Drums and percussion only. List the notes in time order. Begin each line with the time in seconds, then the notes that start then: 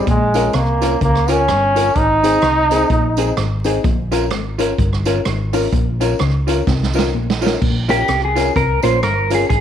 0.07 kick, closed hi-hat
0.34 closed hi-hat, tambourine
0.53 cross-stick, closed hi-hat
0.82 closed hi-hat, tambourine
1.01 kick, closed hi-hat
1.15 cross-stick
1.28 closed hi-hat, tambourine
1.48 cross-stick, closed hi-hat
1.76 closed hi-hat, tambourine
1.95 kick, closed hi-hat
2.24 closed hi-hat, tambourine
2.42 cross-stick, closed hi-hat
2.71 closed hi-hat, tambourine
2.90 kick, closed hi-hat
3.17 closed hi-hat, tambourine
3.37 cross-stick, closed hi-hat
3.64 closed hi-hat, tambourine
3.84 kick, closed hi-hat
4.12 closed hi-hat, tambourine
4.30 cross-stick, closed hi-hat
4.59 closed hi-hat, tambourine
4.78 kick, closed hi-hat
4.93 cross-stick
5.05 closed hi-hat, tambourine
5.25 cross-stick, closed hi-hat
5.53 open hi-hat, tambourine
5.72 kick, closed hi-hat
6.01 closed hi-hat, tambourine
6.19 cross-stick, closed hi-hat
6.48 closed hi-hat, tambourine
6.67 kick, snare
6.83 snare
6.94 tambourine
6.98 snare
7.30 snare
7.42 tambourine
7.46 snare
7.62 kick, crash
7.89 closed hi-hat, tambourine
8.08 cross-stick, closed hi-hat
8.36 closed hi-hat, tambourine
8.56 kick, closed hi-hat
8.82 closed hi-hat, tambourine
9.03 cross-stick, closed hi-hat
9.30 closed hi-hat, tambourine
9.50 kick, closed hi-hat